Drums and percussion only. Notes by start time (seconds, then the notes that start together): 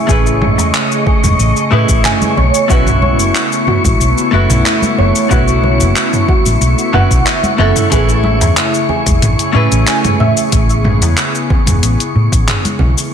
0.09 kick, cabasa
0.26 cabasa
0.42 mid tom, high conga
0.59 cabasa
0.74 clap, cabasa
0.92 cabasa
1.06 kick, low conga
1.23 mid tom, high conga, cabasa
1.40 cabasa
1.57 cabasa
1.89 kick, cabasa
2.05 clap, mid tom, cabasa
2.22 high conga, cabasa
2.37 low conga
2.54 cabasa
2.70 kick, cabasa
2.87 mid tom, cabasa
3.02 high conga
3.20 cabasa
3.35 clap, cabasa
3.52 cabasa
3.67 mid tom, low conga
3.85 kick, high conga, cabasa
4.01 cabasa
4.18 cabasa
4.50 mid tom, cabasa
4.66 clap, cabasa
4.82 high conga, cabasa
4.98 low conga
5.16 cabasa
5.31 kick, mid tom, cabasa
5.48 cabasa
5.64 high conga
5.81 cabasa
5.96 clap, cabasa
6.13 mid tom, cabasa
6.28 kick, low conga
6.45 high conga, cabasa
6.62 cabasa
6.78 cabasa
6.94 mid tom
7.11 kick, cabasa
7.26 clap, cabasa
7.43 high conga, cabasa
7.58 low conga
7.76 mid tom, cabasa
7.92 kick, closed hi-hat, cabasa
8.09 cabasa
8.24 high conga
8.41 closed hi-hat, mid tom, cabasa
8.57 clap, closed hi-hat, cabasa
8.74 cabasa
8.89 low conga
9.06 kick, closed hi-hat, high conga, cabasa
9.22 closed hi-hat, mid tom, cabasa
9.39 closed hi-hat, cabasa
9.72 closed hi-hat, cabasa
9.87 clap, closed hi-hat, cabasa
10.05 closed hi-hat, mid tom, high conga, cabasa
10.20 low conga
10.37 cabasa
10.52 kick, closed hi-hat, cabasa
10.70 cabasa
10.84 mid tom, high conga
11.02 closed hi-hat, cabasa
11.17 clap, closed hi-hat, cabasa
11.35 cabasa
11.50 kick, low conga
11.66 closed hi-hat, mid tom, high conga, cabasa
11.83 closed hi-hat, cabasa
12.00 closed hi-hat, cabasa
12.32 kick, closed hi-hat, cabasa
12.48 clap, closed hi-hat, mid tom, cabasa
12.65 closed hi-hat, high conga, cabasa
12.79 low conga
12.98 cabasa